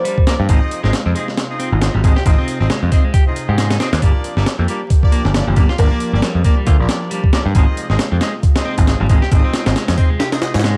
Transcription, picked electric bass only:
0, 0, Header, 1, 2, 480
1, 0, Start_track
1, 0, Tempo, 441176
1, 535, Time_signature, 4, 2, 24, 8
1, 11720, End_track
2, 0, Start_track
2, 0, Title_t, "Picked electric bass"
2, 0, Program_c, 0, 34
2, 431, Note_on_c, 0, 43, 91
2, 507, Note_off_c, 0, 43, 0
2, 533, Note_on_c, 0, 32, 101
2, 636, Note_off_c, 0, 32, 0
2, 915, Note_on_c, 0, 32, 87
2, 989, Note_off_c, 0, 32, 0
2, 1154, Note_on_c, 0, 41, 81
2, 1229, Note_off_c, 0, 41, 0
2, 1875, Note_on_c, 0, 32, 102
2, 2041, Note_off_c, 0, 32, 0
2, 2116, Note_on_c, 0, 32, 106
2, 2190, Note_off_c, 0, 32, 0
2, 2217, Note_on_c, 0, 32, 97
2, 2317, Note_off_c, 0, 32, 0
2, 2456, Note_on_c, 0, 32, 97
2, 2557, Note_off_c, 0, 32, 0
2, 2836, Note_on_c, 0, 32, 88
2, 2910, Note_off_c, 0, 32, 0
2, 3076, Note_on_c, 0, 41, 85
2, 3150, Note_off_c, 0, 41, 0
2, 3795, Note_on_c, 0, 44, 82
2, 4093, Note_off_c, 0, 44, 0
2, 4273, Note_on_c, 0, 39, 95
2, 4349, Note_off_c, 0, 39, 0
2, 4377, Note_on_c, 0, 31, 99
2, 4477, Note_off_c, 0, 31, 0
2, 4752, Note_on_c, 0, 31, 89
2, 4828, Note_off_c, 0, 31, 0
2, 4994, Note_on_c, 0, 41, 84
2, 5069, Note_off_c, 0, 41, 0
2, 5714, Note_on_c, 0, 31, 102
2, 5881, Note_off_c, 0, 31, 0
2, 5956, Note_on_c, 0, 31, 106
2, 6030, Note_off_c, 0, 31, 0
2, 6056, Note_on_c, 0, 31, 95
2, 6157, Note_off_c, 0, 31, 0
2, 6295, Note_on_c, 0, 31, 98
2, 6396, Note_off_c, 0, 31, 0
2, 6672, Note_on_c, 0, 31, 85
2, 6748, Note_off_c, 0, 31, 0
2, 6910, Note_on_c, 0, 41, 81
2, 6987, Note_off_c, 0, 41, 0
2, 7255, Note_on_c, 0, 38, 96
2, 7356, Note_off_c, 0, 38, 0
2, 7394, Note_on_c, 0, 34, 88
2, 7469, Note_off_c, 0, 34, 0
2, 8112, Note_on_c, 0, 43, 88
2, 8188, Note_off_c, 0, 43, 0
2, 8217, Note_on_c, 0, 32, 98
2, 8317, Note_off_c, 0, 32, 0
2, 8593, Note_on_c, 0, 32, 87
2, 8668, Note_off_c, 0, 32, 0
2, 8835, Note_on_c, 0, 41, 84
2, 8909, Note_off_c, 0, 41, 0
2, 9552, Note_on_c, 0, 32, 102
2, 9719, Note_off_c, 0, 32, 0
2, 9795, Note_on_c, 0, 32, 109
2, 9869, Note_off_c, 0, 32, 0
2, 9897, Note_on_c, 0, 32, 99
2, 9997, Note_off_c, 0, 32, 0
2, 10136, Note_on_c, 0, 32, 104
2, 10237, Note_off_c, 0, 32, 0
2, 10517, Note_on_c, 0, 32, 88
2, 10590, Note_off_c, 0, 32, 0
2, 10757, Note_on_c, 0, 41, 83
2, 10830, Note_off_c, 0, 41, 0
2, 11479, Note_on_c, 0, 44, 85
2, 11720, Note_off_c, 0, 44, 0
2, 11720, End_track
0, 0, End_of_file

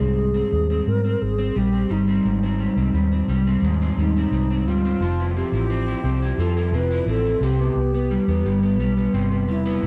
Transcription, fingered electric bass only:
0, 0, Header, 1, 2, 480
1, 0, Start_track
1, 0, Tempo, 689814
1, 1562, Time_signature, 4, 2, 24, 8
1, 6867, End_track
2, 0, Start_track
2, 0, Title_t, "Fingered electric bass"
2, 0, Program_c, 0, 33
2, 0, Note_on_c, 0, 36, 77
2, 289, Note_off_c, 0, 36, 0
2, 363, Note_on_c, 0, 39, 84
2, 555, Note_off_c, 0, 39, 0
2, 604, Note_on_c, 0, 44, 96
2, 796, Note_off_c, 0, 44, 0
2, 847, Note_on_c, 0, 32, 78
2, 1037, Note_off_c, 0, 32, 0
2, 1086, Note_on_c, 0, 34, 90
2, 1276, Note_off_c, 0, 34, 0
2, 1322, Note_on_c, 0, 31, 95
2, 1514, Note_off_c, 0, 31, 0
2, 1564, Note_on_c, 0, 32, 91
2, 1851, Note_off_c, 0, 32, 0
2, 1922, Note_on_c, 0, 36, 77
2, 2018, Note_off_c, 0, 36, 0
2, 2041, Note_on_c, 0, 39, 83
2, 2233, Note_off_c, 0, 39, 0
2, 2281, Note_on_c, 0, 36, 82
2, 2473, Note_off_c, 0, 36, 0
2, 2517, Note_on_c, 0, 39, 89
2, 2711, Note_off_c, 0, 39, 0
2, 2761, Note_on_c, 0, 39, 83
2, 2953, Note_off_c, 0, 39, 0
2, 3001, Note_on_c, 0, 36, 81
2, 3243, Note_off_c, 0, 36, 0
2, 3243, Note_on_c, 0, 38, 86
2, 3434, Note_off_c, 0, 38, 0
2, 3480, Note_on_c, 0, 29, 95
2, 3769, Note_off_c, 0, 29, 0
2, 3842, Note_on_c, 0, 33, 74
2, 4130, Note_off_c, 0, 33, 0
2, 4201, Note_on_c, 0, 36, 80
2, 4393, Note_off_c, 0, 36, 0
2, 4438, Note_on_c, 0, 41, 98
2, 4676, Note_on_c, 0, 29, 86
2, 4687, Note_off_c, 0, 41, 0
2, 4870, Note_off_c, 0, 29, 0
2, 4912, Note_on_c, 0, 33, 84
2, 5108, Note_off_c, 0, 33, 0
2, 5153, Note_on_c, 0, 36, 97
2, 5348, Note_off_c, 0, 36, 0
2, 5396, Note_on_c, 0, 36, 80
2, 5686, Note_off_c, 0, 36, 0
2, 5759, Note_on_c, 0, 40, 83
2, 5856, Note_off_c, 0, 40, 0
2, 5876, Note_on_c, 0, 31, 78
2, 6118, Note_off_c, 0, 31, 0
2, 6118, Note_on_c, 0, 35, 80
2, 6311, Note_off_c, 0, 35, 0
2, 6357, Note_on_c, 0, 31, 74
2, 6600, Note_off_c, 0, 31, 0
2, 6600, Note_on_c, 0, 28, 82
2, 6792, Note_off_c, 0, 28, 0
2, 6836, Note_on_c, 0, 31, 82
2, 6867, Note_off_c, 0, 31, 0
2, 6867, End_track
0, 0, End_of_file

